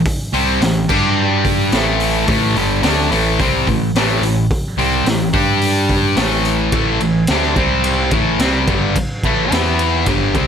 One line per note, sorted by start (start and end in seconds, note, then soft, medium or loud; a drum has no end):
0.05 kick loud
0.05 open hi-hat loud
0.33 0.59 C2 medium
0.33 0.60 C3 loud
0.33 0.61 G3 loud
0.33 0.61 C4 loud
0.33 open hi-hat medium
0.61 0.87 A1 medium
0.61 0.84 A2 medium
0.61 0.84 E3 medium
0.61 snare loud
0.61 open hi-hat medium
0.89 1.68 G2 medium
0.89 1.72 G3 medium
0.89 1.72 D4 medium
0.89 1.72 G4 loud
0.89 kick loud
0.89 crash medium
1.45 kick medium
1.45 open hi-hat medium
1.71 2.24 A1 medium
1.71 2.26 A2 medium
1.71 2.27 E3 loud
1.71 2.28 A3 loud
1.71 snare loud
1.71 open hi-hat medium
2.00 open hi-hat medium
2.27 2.54 A1 medium
2.27 2.55 A2 medium
2.27 2.55 E3 loud
2.27 2.56 A3 loud
2.27 kick loud
2.27 open hi-hat medium
2.55 2.81 G1 loud
2.55 2.83 G2 medium
2.55 2.82 D3 medium
2.55 2.83 G3 loud
2.55 open hi-hat soft
2.83 3.09 D2 medium
2.83 3.10 D3 medium
2.83 3.11 A3 loud
2.83 3.11 D4 loud
2.83 snare loud
2.83 open hi-hat medium
3.11 3.37 A1 medium
3.11 3.38 A2 loud
3.11 3.38 E3 medium
3.11 3.39 A3 loud
3.11 open hi-hat medium
3.39 3.65 C2 loud
3.39 3.67 C3 medium
3.39 3.67 G3 medium
3.39 3.67 C4 loud
3.39 kick medium
3.39 open hi-hat medium
3.67 3.93 A1 medium
3.67 3.90 A2 medium
3.67 3.90 E3 medium
3.67 kick medium
3.67 open hi-hat medium
3.94 4.20 A1 medium
3.94 4.22 A2 loud
3.94 4.22 E3 medium
3.94 4.23 A3 loud
3.94 snare loud
3.94 open hi-hat medium
4.21 4.48 A1 medium
4.21 4.45 A2 medium
4.21 4.45 E3 medium
4.21 open hi-hat medium
4.51 kick loud
4.51 open hi-hat medium
4.77 5.04 C2 medium
4.77 5.05 C3 medium
4.77 5.05 G3 loud
4.77 5.05 C4 loud
4.77 open hi-hat medium
5.04 5.31 A1 medium
5.04 5.28 A2 medium
5.04 5.29 E3 medium
5.04 snare loud
5.04 open hi-hat medium
5.33 6.13 G2 loud
5.33 6.16 G3 loud
5.33 6.16 D4 medium
5.33 6.16 G4 loud
5.33 kick loud
5.33 open hi-hat medium
5.62 open hi-hat medium
5.89 kick medium
5.89 open hi-hat medium
6.16 6.68 A1 medium
6.16 6.72 A2 loud
6.16 6.72 E3 loud
6.16 6.72 A3 loud
6.16 snare loud
6.16 open hi-hat medium
6.45 open hi-hat medium
6.72 6.98 A1 medium
6.72 6.99 A2 medium
6.72 7.00 E3 medium
6.72 7.01 A3 medium
6.72 kick loud
6.72 ride medium
7.00 7.26 A1 medium
7.00 7.23 A2 medium
7.00 7.23 E3 medium
7.00 ride medium
7.27 7.54 D2 medium
7.27 7.56 D3 medium
7.27 7.56 A3 loud
7.27 7.57 D4 loud
7.27 snare loud
7.27 ride medium
7.43 snare soft
7.56 8.08 C2 medium
7.56 8.11 C3 medium
7.56 8.11 G3 medium
7.56 8.12 C4 loud
7.56 kick loud
7.56 ride medium
7.84 ride medium
8.11 8.37 A1 loud
8.11 8.39 A2 medium
8.11 8.40 E3 medium
8.11 8.40 A3 medium
8.11 kick loud
8.11 ride medium
8.38 8.65 C2 medium
8.38 8.67 C3 medium
8.38 8.67 G3 medium
8.38 8.67 C4 loud
8.38 snare loud
8.38 ride medium
8.68 8.94 G1 medium
8.68 8.95 G2 medium
8.68 8.95 D3 medium
8.68 8.96 G3 medium
8.68 kick loud
8.68 ride medium
8.96 muted picked electric bass stroke soft
8.96 muted distorted electric guitar stroke medium
8.96 kick loud
8.96 ride loud
9.23 9.49 A1 medium
9.23 9.52 A2 medium
9.23 9.52 E3 loud
9.23 9.53 A3 loud
9.23 kick medium
9.23 ride medium
9.51 10.03 E2 loud
9.51 10.06 E3 medium
9.51 10.07 B3 medium
9.51 10.07 E4 medium
9.51 snare loud
9.51 ride loud
9.66 snare soft
9.79 ride medium
10.06 10.33 G1 loud
10.06 10.34 G2 medium
10.06 10.34 D3 loud
10.06 10.34 G3 loud
10.06 kick medium
10.06 ride medium
10.34 10.47 C2 medium
10.34 10.47 C3 medium
10.34 10.47 G3 medium
10.34 10.47 C4 medium
10.34 kick loud
10.34 ride medium